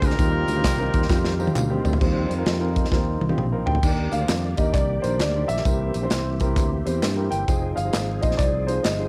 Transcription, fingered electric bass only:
0, 0, Header, 1, 2, 480
1, 0, Start_track
1, 0, Key_signature, -3, "major"
1, 0, Tempo, 455581
1, 199, Time_signature, 4, 2, 24, 8
1, 9572, End_track
2, 0, Start_track
2, 0, Title_t, "Fingered electric bass"
2, 0, Program_c, 0, 33
2, 23, Note_on_c, 0, 38, 91
2, 171, Note_off_c, 0, 38, 0
2, 200, Note_on_c, 0, 39, 100
2, 460, Note_off_c, 0, 39, 0
2, 507, Note_on_c, 0, 38, 88
2, 653, Note_off_c, 0, 38, 0
2, 676, Note_on_c, 0, 36, 86
2, 937, Note_off_c, 0, 36, 0
2, 990, Note_on_c, 0, 39, 90
2, 1134, Note_off_c, 0, 39, 0
2, 1155, Note_on_c, 0, 41, 97
2, 1564, Note_off_c, 0, 41, 0
2, 1636, Note_on_c, 0, 38, 85
2, 1897, Note_off_c, 0, 38, 0
2, 1943, Note_on_c, 0, 38, 79
2, 2091, Note_off_c, 0, 38, 0
2, 2120, Note_on_c, 0, 39, 99
2, 2380, Note_off_c, 0, 39, 0
2, 2422, Note_on_c, 0, 41, 81
2, 2570, Note_off_c, 0, 41, 0
2, 2596, Note_on_c, 0, 41, 84
2, 3005, Note_off_c, 0, 41, 0
2, 3072, Note_on_c, 0, 39, 86
2, 3335, Note_off_c, 0, 39, 0
2, 3386, Note_on_c, 0, 36, 78
2, 3532, Note_off_c, 0, 36, 0
2, 3558, Note_on_c, 0, 34, 79
2, 3819, Note_off_c, 0, 34, 0
2, 3862, Note_on_c, 0, 38, 80
2, 4010, Note_off_c, 0, 38, 0
2, 4035, Note_on_c, 0, 39, 97
2, 4297, Note_off_c, 0, 39, 0
2, 4343, Note_on_c, 0, 38, 79
2, 4491, Note_off_c, 0, 38, 0
2, 4518, Note_on_c, 0, 41, 88
2, 4779, Note_off_c, 0, 41, 0
2, 4829, Note_on_c, 0, 39, 84
2, 4975, Note_off_c, 0, 39, 0
2, 4993, Note_on_c, 0, 36, 87
2, 5257, Note_off_c, 0, 36, 0
2, 5311, Note_on_c, 0, 34, 88
2, 5482, Note_off_c, 0, 34, 0
2, 5482, Note_on_c, 0, 38, 83
2, 5742, Note_off_c, 0, 38, 0
2, 5788, Note_on_c, 0, 34, 87
2, 5935, Note_off_c, 0, 34, 0
2, 5955, Note_on_c, 0, 36, 86
2, 6218, Note_off_c, 0, 36, 0
2, 6274, Note_on_c, 0, 34, 91
2, 6418, Note_off_c, 0, 34, 0
2, 6449, Note_on_c, 0, 36, 88
2, 6915, Note_off_c, 0, 36, 0
2, 6915, Note_on_c, 0, 38, 92
2, 7179, Note_off_c, 0, 38, 0
2, 7233, Note_on_c, 0, 40, 83
2, 7378, Note_off_c, 0, 40, 0
2, 7408, Note_on_c, 0, 43, 79
2, 7666, Note_off_c, 0, 43, 0
2, 7712, Note_on_c, 0, 31, 77
2, 7858, Note_off_c, 0, 31, 0
2, 7883, Note_on_c, 0, 29, 92
2, 8143, Note_off_c, 0, 29, 0
2, 8191, Note_on_c, 0, 31, 77
2, 8337, Note_off_c, 0, 31, 0
2, 8369, Note_on_c, 0, 32, 82
2, 8627, Note_off_c, 0, 32, 0
2, 8674, Note_on_c, 0, 34, 85
2, 8819, Note_off_c, 0, 34, 0
2, 8840, Note_on_c, 0, 36, 80
2, 9249, Note_off_c, 0, 36, 0
2, 9324, Note_on_c, 0, 31, 93
2, 9572, Note_off_c, 0, 31, 0
2, 9572, End_track
0, 0, End_of_file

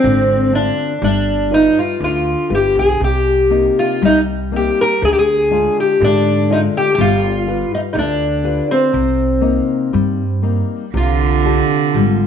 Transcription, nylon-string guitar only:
0, 0, Header, 1, 2, 480
1, 0, Start_track
1, 0, Key_signature, -3, "minor"
1, 0, Tempo, 983607
1, 498, Time_signature, 2, 2, 24, 8
1, 981, Tempo, 1006711
1, 2421, Tempo, 977199
1, 4341, Tempo, 1005025
1, 5931, End_track
2, 0, Start_track
2, 0, Title_t, "Nylon-string guitar"
2, 0, Program_c, 0, 24
2, 0, Note_on_c, 0, 60, 47
2, 0, Note_on_c, 0, 62, 42
2, 0, Note_on_c, 0, 65, 55
2, 18, Note_on_c, 0, 50, 62
2, 166, Note_off_c, 0, 60, 0
2, 166, Note_off_c, 0, 62, 0
2, 169, Note_off_c, 0, 65, 0
2, 256, Note_on_c, 0, 60, 42
2, 258, Note_on_c, 0, 62, 38
2, 259, Note_on_c, 0, 65, 48
2, 448, Note_off_c, 0, 60, 0
2, 448, Note_off_c, 0, 62, 0
2, 450, Note_off_c, 0, 65, 0
2, 482, Note_off_c, 0, 50, 0
2, 496, Note_on_c, 0, 55, 59
2, 736, Note_on_c, 0, 65, 42
2, 739, Note_on_c, 0, 67, 37
2, 741, Note_on_c, 0, 71, 48
2, 965, Note_off_c, 0, 55, 0
2, 977, Note_on_c, 0, 50, 56
2, 1123, Note_off_c, 0, 65, 0
2, 1123, Note_off_c, 0, 67, 0
2, 1124, Note_off_c, 0, 71, 0
2, 1212, Note_on_c, 0, 65, 41
2, 1214, Note_on_c, 0, 67, 38
2, 1214, Note_on_c, 0, 71, 42
2, 1406, Note_off_c, 0, 65, 0
2, 1407, Note_off_c, 0, 67, 0
2, 1407, Note_off_c, 0, 71, 0
2, 1442, Note_off_c, 0, 50, 0
2, 1455, Note_on_c, 0, 48, 56
2, 1691, Note_on_c, 0, 58, 42
2, 1694, Note_on_c, 0, 60, 37
2, 1698, Note_on_c, 0, 63, 49
2, 1926, Note_off_c, 0, 48, 0
2, 1937, Note_on_c, 0, 55, 61
2, 2082, Note_off_c, 0, 58, 0
2, 2083, Note_off_c, 0, 60, 0
2, 2086, Note_off_c, 0, 63, 0
2, 2175, Note_on_c, 0, 58, 44
2, 2179, Note_on_c, 0, 60, 41
2, 2182, Note_on_c, 0, 63, 48
2, 2368, Note_off_c, 0, 58, 0
2, 2370, Note_off_c, 0, 60, 0
2, 2371, Note_off_c, 0, 63, 0
2, 2402, Note_off_c, 0, 55, 0
2, 2412, Note_on_c, 0, 50, 58
2, 2655, Note_on_c, 0, 56, 45
2, 2658, Note_on_c, 0, 62, 43
2, 2660, Note_on_c, 0, 65, 53
2, 2885, Note_off_c, 0, 50, 0
2, 2898, Note_on_c, 0, 50, 67
2, 3045, Note_off_c, 0, 56, 0
2, 3046, Note_off_c, 0, 62, 0
2, 3046, Note_off_c, 0, 65, 0
2, 3142, Note_on_c, 0, 56, 46
2, 3145, Note_on_c, 0, 62, 43
2, 3146, Note_on_c, 0, 65, 50
2, 3334, Note_off_c, 0, 56, 0
2, 3335, Note_off_c, 0, 65, 0
2, 3336, Note_off_c, 0, 62, 0
2, 3366, Note_off_c, 0, 50, 0
2, 3380, Note_on_c, 0, 55, 67
2, 3619, Note_on_c, 0, 65, 49
2, 3623, Note_on_c, 0, 67, 45
2, 3625, Note_on_c, 0, 71, 54
2, 3842, Note_off_c, 0, 55, 0
2, 3855, Note_on_c, 0, 50, 61
2, 4001, Note_off_c, 0, 65, 0
2, 4003, Note_off_c, 0, 67, 0
2, 4004, Note_off_c, 0, 71, 0
2, 4095, Note_on_c, 0, 65, 43
2, 4097, Note_on_c, 0, 67, 39
2, 4099, Note_on_c, 0, 71, 49
2, 4289, Note_off_c, 0, 65, 0
2, 4290, Note_off_c, 0, 67, 0
2, 4290, Note_off_c, 0, 71, 0
2, 4323, Note_off_c, 0, 50, 0
2, 4336, Note_on_c, 0, 48, 56
2, 4566, Note_on_c, 0, 58, 43
2, 4569, Note_on_c, 0, 60, 40
2, 4571, Note_on_c, 0, 63, 50
2, 4798, Note_off_c, 0, 48, 0
2, 4814, Note_on_c, 0, 55, 54
2, 4953, Note_off_c, 0, 58, 0
2, 4955, Note_off_c, 0, 60, 0
2, 4956, Note_off_c, 0, 63, 0
2, 5051, Note_on_c, 0, 58, 37
2, 5053, Note_on_c, 0, 60, 35
2, 5055, Note_on_c, 0, 63, 39
2, 5246, Note_off_c, 0, 58, 0
2, 5247, Note_off_c, 0, 60, 0
2, 5248, Note_off_c, 0, 63, 0
2, 5282, Note_off_c, 0, 55, 0
2, 5296, Note_on_c, 0, 48, 60
2, 5541, Note_on_c, 0, 60, 42
2, 5544, Note_on_c, 0, 62, 44
2, 5545, Note_on_c, 0, 67, 47
2, 5764, Note_off_c, 0, 48, 0
2, 5781, Note_on_c, 0, 55, 61
2, 5923, Note_off_c, 0, 60, 0
2, 5924, Note_off_c, 0, 62, 0
2, 5925, Note_off_c, 0, 67, 0
2, 5931, Note_off_c, 0, 55, 0
2, 5931, End_track
0, 0, End_of_file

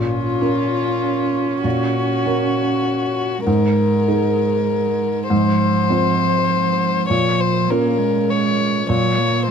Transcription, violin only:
0, 0, Header, 1, 2, 480
1, 0, Start_track
1, 0, Key_signature, -5, "minor"
1, 0, Tempo, 611621
1, 1291, Time_signature, 3, 2, 24, 8
1, 4162, Tempo, 596421
1, 7546, End_track
2, 0, Start_track
2, 0, Title_t, "Violin"
2, 0, Program_c, 0, 40
2, 0, Note_on_c, 0, 65, 40
2, 1258, Note_off_c, 0, 65, 0
2, 1301, Note_on_c, 0, 66, 47
2, 2700, Note_off_c, 0, 66, 0
2, 2721, Note_on_c, 0, 70, 49
2, 4131, Note_off_c, 0, 70, 0
2, 4158, Note_on_c, 0, 72, 54
2, 5571, Note_off_c, 0, 72, 0
2, 5597, Note_on_c, 0, 73, 55
2, 5856, Note_on_c, 0, 72, 54
2, 5868, Note_off_c, 0, 73, 0
2, 6095, Note_on_c, 0, 70, 54
2, 6107, Note_off_c, 0, 72, 0
2, 6574, Note_on_c, 0, 73, 50
2, 6586, Note_off_c, 0, 70, 0
2, 7047, Note_off_c, 0, 73, 0
2, 7054, Note_on_c, 0, 73, 50
2, 7519, Note_off_c, 0, 73, 0
2, 7546, End_track
0, 0, End_of_file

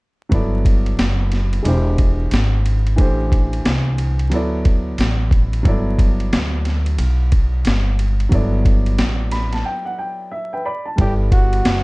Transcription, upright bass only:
0, 0, Header, 1, 2, 480
1, 0, Start_track
1, 0, Key_signature, 1, "major"
1, 0, Tempo, 666667
1, 230, Time_signature, 4, 2, 24, 8
1, 8520, End_track
2, 0, Start_track
2, 0, Title_t, "Upright bass"
2, 0, Program_c, 0, 32
2, 230, Note_on_c, 0, 31, 95
2, 686, Note_off_c, 0, 31, 0
2, 710, Note_on_c, 0, 30, 74
2, 1166, Note_off_c, 0, 30, 0
2, 1184, Note_on_c, 0, 28, 92
2, 1643, Note_off_c, 0, 28, 0
2, 1669, Note_on_c, 0, 32, 82
2, 2126, Note_off_c, 0, 32, 0
2, 2148, Note_on_c, 0, 33, 93
2, 2605, Note_off_c, 0, 33, 0
2, 2629, Note_on_c, 0, 36, 84
2, 3109, Note_off_c, 0, 36, 0
2, 3109, Note_on_c, 0, 38, 90
2, 3566, Note_off_c, 0, 38, 0
2, 3589, Note_on_c, 0, 33, 75
2, 4046, Note_off_c, 0, 33, 0
2, 4070, Note_on_c, 0, 31, 92
2, 4526, Note_off_c, 0, 31, 0
2, 4555, Note_on_c, 0, 38, 90
2, 5009, Note_off_c, 0, 38, 0
2, 5029, Note_on_c, 0, 35, 75
2, 5486, Note_off_c, 0, 35, 0
2, 5511, Note_on_c, 0, 31, 77
2, 5967, Note_off_c, 0, 31, 0
2, 5990, Note_on_c, 0, 31, 94
2, 6446, Note_off_c, 0, 31, 0
2, 6468, Note_on_c, 0, 33, 82
2, 6925, Note_off_c, 0, 33, 0
2, 7909, Note_on_c, 0, 31, 100
2, 8366, Note_off_c, 0, 31, 0
2, 8394, Note_on_c, 0, 30, 83
2, 8520, Note_off_c, 0, 30, 0
2, 8520, End_track
0, 0, End_of_file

